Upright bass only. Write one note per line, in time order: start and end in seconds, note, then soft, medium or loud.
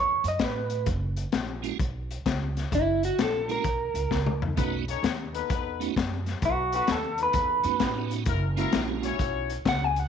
0.00 0.18 E2 medium
0.24 0.37 F#2 medium
0.40 0.88 A2 medium
0.86 1.23 F#1 medium
1.33 1.70 A#1 medium
1.79 2.16 B1 medium
2.26 2.63 C#2 medium
2.73 3.09 F#1 loud
3.18 3.55 A#1 medium
3.65 3.89 B1 medium
3.94 4.07 C#2 medium
4.11 4.48 C#2 medium
4.57 4.94 B1 loud
5.03 5.40 D#2 medium
5.50 5.87 E2 medium
5.96 6.33 F#2 medium
6.42 6.79 B1 loud
6.89 7.25 D#2 medium
7.34 7.58 E2 medium
7.64 7.77 F#2 medium
7.81 8.28 A2 medium
8.26 8.63 F#1 loud
8.73 9.10 A#1 medium
9.19 9.56 B1 medium
9.65 10.02 C#2 medium